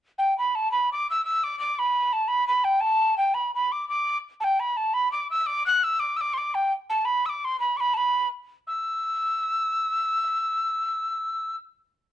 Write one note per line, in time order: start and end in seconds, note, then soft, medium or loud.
0.18 0.37 G5 medium
0.38 0.57 B5 medium
0.55 0.71 A5 medium
0.71 0.90 B5 medium
0.92 1.07 D6 medium
1.10 1.24 E6 medium
1.25 1.45 E6 medium
1.44 1.59 D6 medium
1.59 1.75 D6 medium
1.75 2.14 B5 medium
1.75 1.80 D6 medium
2.13 2.29 A5 medium
2.28 2.47 B5 medium
2.48 2.66 B5 medium
2.64 2.82 G5 medium
2.81 3.17 A5 medium
3.18 3.36 G5 medium
3.34 3.54 B5 medium
3.55 3.73 B5 medium
3.72 3.88 D6 medium
3.89 4.17 D6 medium
4.40 4.61 G5 medium
4.40 4.45 A5 medium
4.60 4.78 B5 medium
4.77 4.95 A5 medium
4.94 5.11 B5 medium
5.12 5.28 D6 medium
5.31 5.48 E6 medium
5.46 5.66 D6 medium
5.66 5.85 F#6 medium
5.83 6.01 E6 medium
6.00 6.18 D6 medium
6.17 6.22 E6 medium
6.21 6.35 D6 medium
6.34 6.39 C6 medium
6.38 6.56 D6 medium
6.54 6.73 G5 medium
6.90 7.07 A5 medium
7.05 7.27 B5 medium
7.26 7.46 D6 medium
7.26 7.30 E6 medium
7.45 7.59 C6 medium
7.60 7.78 B5 medium
7.77 7.95 B5 medium
7.77 7.81 D6 medium
7.94 7.98 A5 medium
7.94 8.28 B5 medium
8.67 11.56 E6 medium